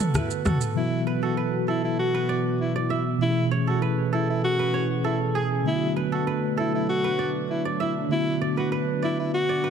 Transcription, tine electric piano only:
0.00 0.71 D3 medium
0.00 0.72 A3 medium
0.00 0.72 B3 medium
0.00 0.73 F#4 medium
0.74 3.16 B2 medium
0.74 3.16 E3 medium
0.74 3.17 F#3 medium
0.74 3.18 B3 medium
0.79 3.18 F#4 medium
3.18 5.61 B2 medium
3.18 5.61 E3 medium
3.18 5.62 A3 medium
3.18 5.62 C#4 medium
3.23 3.29 G4 medium
3.30 5.66 G#4 medium
5.64 8.06 D3 medium
5.64 8.06 A3 medium
5.64 8.07 B3 medium
5.68 5.74 E4 medium
5.75 8.11 F#4 medium
8.08 9.70 D3 medium
8.08 9.70 A3 medium
8.08 9.70 B3 medium
8.13 9.70 F#4 medium

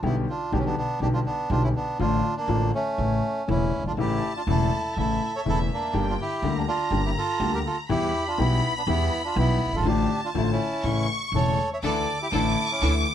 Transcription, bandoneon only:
0.05 0.16 B3 medium
0.05 0.15 E4 medium
0.29 0.52 D4 medium
0.29 0.51 F4 medium
0.53 0.59 B3 medium
0.53 0.58 D4 medium
0.59 0.64 C#4 medium
0.65 0.76 B3 medium
0.65 0.75 D4 medium
0.77 1.00 B3 medium
0.77 0.99 D4 medium
1.02 1.08 D4 medium
1.02 1.07 G4 medium
1.14 1.20 D4 medium
1.14 1.19 F4 medium
1.26 1.49 B3 medium
1.26 1.50 D4 medium
1.51 1.62 D4 medium
1.51 1.63 F4 medium
1.63 1.69 C#4 soft
1.63 1.69 E4 medium
1.76 1.98 B3 medium
1.76 1.98 D4 medium
2.00 2.35 D4 medium
2.00 2.34 F4 medium
2.36 2.71 A#3 medium
2.36 2.71 D4 medium
2.74 3.45 A3 medium
2.74 3.49 C#4 medium
3.50 3.84 C#4 medium
3.50 3.83 E4 medium
3.87 3.92 D4 medium
3.87 3.92 F4 medium
4.00 4.33 E4 medium
4.00 4.33 G4 medium
4.37 4.42 D4 medium
4.37 4.42 F4 medium
4.49 4.94 E4 medium
4.49 4.97 A4 medium
4.99 5.32 E4 medium
4.99 5.35 A4 medium
5.36 5.41 A4 medium
5.36 5.41 C#5 medium
5.49 5.59 E4 medium
5.49 5.59 A4 medium
5.74 6.06 A#3 medium
5.74 6.08 D4 medium
6.09 6.14 D4 medium
6.09 6.14 F4 medium
6.21 6.54 E4 medium
6.21 6.58 G4 medium
6.57 6.62 A#3 medium
6.57 6.62 D4 medium
6.68 7.02 D4 medium
6.68 7.02 F4 medium
7.05 7.11 E4 medium
7.05 7.10 G4 medium
7.18 7.51 F4 medium
7.18 7.54 A4 medium
7.54 7.59 G4 medium
7.54 7.60 A#4 medium
7.66 7.77 F4 medium
7.66 7.77 A4 medium
7.90 8.24 E4 medium
7.90 8.28 G4 medium
8.27 8.38 D4 medium
8.27 8.39 F4 medium
8.40 8.73 B3 medium
8.40 8.73 E4 medium
8.77 8.82 B3 medium
8.77 8.83 D4 medium
8.88 9.22 B3 medium
8.88 9.22 E4 medium
9.25 9.36 D4 medium
9.25 9.37 F4 medium
9.38 9.71 B3 medium
9.38 9.75 E4 medium
9.75 9.86 F4 medium
9.75 9.87 A4 medium
9.87 10.21 D4 medium
9.87 10.21 G4 medium
10.24 10.29 D4 medium
10.24 10.30 F4 medium
10.36 10.42 A3 medium
10.36 10.42 E4 medium
10.43 10.49 F4 medium
10.52 11.06 C#4 medium
10.52 11.06 E4 medium
11.35 11.69 A4 medium
11.35 11.70 C#5 medium
11.73 11.78 C#5 medium
11.73 11.79 E5 medium
11.85 12.18 A4 medium
11.85 12.19 D5 medium
12.22 12.27 E4 medium
12.22 12.27 G4 medium
12.34 12.68 E4 medium
12.34 12.71 A4 medium
12.71 12.93 C#4 medium
12.71 12.93 E4 medium

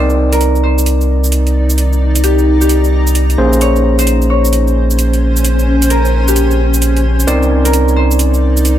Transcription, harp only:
0.00 0.63 C5 medium
0.32 2.45 A#4 medium
0.63 2.61 C5 medium
2.24 2.61 G4 medium
2.61 4.96 G4 medium
3.61 4.05 C#5 medium
3.99 4.36 C5 medium
4.30 6.21 C#5 medium
5.90 7.65 A#4 medium
6.28 8.63 G4 medium
7.27 7.96 C5 medium
7.65 8.79 A#4 medium
7.96 8.79 C5 medium

